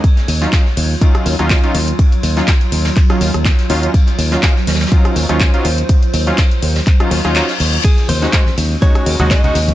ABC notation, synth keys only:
X:1
M:4/4
L:1/16
Q:"Swing 16ths" 1/4=123
K:Ebdor
V:1 name="Synth keys"
z3 [G,DEF]2 z3 [G,DEF]3 [G,DEF]2 [G,DEF] z2 | z3 [G,DEF] z4 z [G,DEF]2 z3 [G,DEF]2 | z3 [G,DEF]2 z3 [G,DEF]3 [G,DEF]2 [G,DEF] z2 | z3 [G,DEF] z4 z [G,DEF]2 [G,DEF] [G,DEF] z3 |
z3 [A,DEG]2 z3 [A,DEG]3 [A,DEG]2 [A,DEG] z2 |]